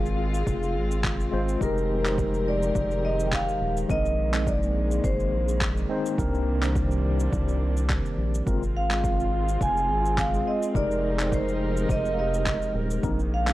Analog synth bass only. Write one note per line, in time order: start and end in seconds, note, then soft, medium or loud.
0.00 0.43 G#1 medium
0.47 0.76 F1 medium
0.75 1.29 G#1 medium
1.33 1.57 G#1 loud
1.61 2.72 F1 medium
2.75 3.44 F1 medium
3.61 3.85 D#1 medium
3.90 5.00 A#1 medium
5.04 5.34 G#1 loud
5.32 5.86 A#1 medium
6.18 7.29 C2 loud
7.33 8.01 C2 medium
8.18 8.42 A#1 medium
8.47 9.58 G#1 medium
9.61 9.91 F1 medium
9.89 10.43 G#1 medium
10.75 11.86 F1 medium
11.89 12.58 F1 medium
12.74 12.99 D#1 medium
13.03 13.53 A#1 loud